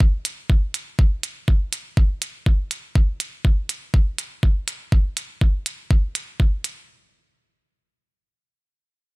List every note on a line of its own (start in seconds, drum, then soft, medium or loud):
0.00 kick loud
0.25 closed hi-hat medium
0.50 kick loud
0.74 closed hi-hat medium
0.99 kick loud
1.23 closed hi-hat medium
1.48 kick loud
1.73 closed hi-hat medium
1.97 kick loud
2.22 closed hi-hat medium
2.46 kick loud
2.71 closed hi-hat medium
2.95 kick loud
3.20 closed hi-hat medium
3.45 kick loud
3.69 closed hi-hat medium
3.94 kick loud
4.18 closed hi-hat medium
4.43 kick loud
4.68 closed hi-hat medium
4.92 kick loud
5.17 closed hi-hat medium
5.41 kick loud
5.66 closed hi-hat medium
5.91 kick loud
6.15 closed hi-hat medium
6.40 kick medium
6.64 closed hi-hat medium